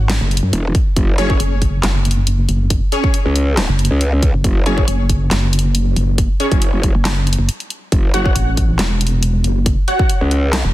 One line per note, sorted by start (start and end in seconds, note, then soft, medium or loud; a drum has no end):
0.00 0.19 G#1 loud
0.10 snare loud
0.10 clap medium
0.10 closed hi-hat medium
0.21 0.41 F#1 medium
0.31 closed hi-hat soft
0.37 closed hi-hat medium
0.43 0.51 F#2 loud
0.53 0.73 E1 loud
0.53 closed hi-hat medium
0.75 kick loud
0.75 closed hi-hat medium
0.96 1.38 F#1 medium
0.96 kick loud
0.96 closed hi-hat medium
1.18 1.37 C#4 loud
1.18 1.37 G#4 medium
1.18 1.37 C#5 loud
1.18 closed hi-hat medium
1.30 kick loud
1.40 1.82 F#1 loud
1.40 closed hi-hat medium
1.62 kick medium
1.62 closed hi-hat medium
1.83 2.47 F#1 loud
1.83 snare loud
1.83 clap medium
1.83 closed hi-hat medium
2.05 closed hi-hat soft
2.11 closed hi-hat medium
2.27 closed hi-hat medium
2.49 2.80 F#1 medium
2.49 closed hi-hat medium
2.70 kick loud
2.70 closed hi-hat medium
2.92 3.11 C#4 loud
2.92 3.11 G#4 medium
2.92 3.10 C#5 loud
2.92 closed hi-hat medium
3.04 kick loud
3.14 closed hi-hat medium
3.25 3.67 C#2 loud
3.36 closed hi-hat medium
3.57 snare loud
3.57 clap medium
3.57 closed hi-hat medium
3.69 3.89 F#1 loud
3.79 closed hi-hat soft
3.85 closed hi-hat medium
3.91 4.32 C#2 loud
4.01 closed hi-hat medium
4.23 kick loud
4.23 closed hi-hat medium
4.34 4.43 F#1 loud
4.44 4.86 F#1 loud
4.44 kick loud
4.44 closed hi-hat medium
4.66 4.84 C#4 loud
4.66 4.84 G#4 medium
4.66 4.84 C#5 loud
4.66 closed hi-hat medium
4.78 kick loud
4.88 5.30 F#1 loud
4.88 closed hi-hat medium
5.09 kick medium
5.09 closed hi-hat medium
5.31 5.95 F#1 medium
5.31 snare loud
5.31 clap medium
5.31 closed hi-hat medium
5.53 closed hi-hat medium
5.59 closed hi-hat medium
5.75 closed hi-hat medium
5.96 6.28 F#1 medium
5.96 closed hi-hat medium
6.18 kick loud
6.18 closed hi-hat medium
6.40 6.58 C#4 loud
6.40 6.58 G#4 medium
6.40 6.58 C#5 loud
6.40 closed hi-hat medium
6.52 6.71 F#1 loud
6.52 kick loud
6.52 closed hi-hat soft
6.62 closed hi-hat medium
6.73 6.93 F#1 loud
6.83 kick medium
6.83 closed hi-hat medium
6.95 7.37 F#1 medium
7.05 snare loud
7.05 clap medium
7.05 closed hi-hat medium
7.27 closed hi-hat medium
7.33 closed hi-hat medium
7.39 7.49 F#1 loud
7.49 closed hi-hat medium
7.60 closed hi-hat soft
7.70 closed hi-hat medium
7.92 8.34 F#1 medium
7.92 kick loud
7.92 closed hi-hat medium
8.14 8.32 F#4 loud
8.14 8.32 C#5 medium
8.14 8.32 F#5 loud
8.14 closed hi-hat medium
8.26 kick loud
8.36 8.77 A1 loud
8.36 closed hi-hat medium
8.57 kick medium
8.57 closed hi-hat medium
8.79 9.43 E1 loud
8.79 snare loud
8.79 clap medium
8.79 closed hi-hat medium
9.01 closed hi-hat medium
9.07 closed hi-hat medium
9.23 closed hi-hat medium
9.44 9.76 F#1 medium
9.44 closed hi-hat medium
9.66 kick loud
9.66 closed hi-hat medium
9.88 10.06 F#4 loud
9.88 10.06 C#5 medium
9.88 10.06 F#5 loud
9.88 closed hi-hat medium
9.99 kick loud
10.09 closed hi-hat medium
10.21 10.63 C#2 loud
10.31 closed hi-hat medium
10.53 snare loud
10.53 clap medium
10.53 closed hi-hat medium
10.65 10.73 E1 loud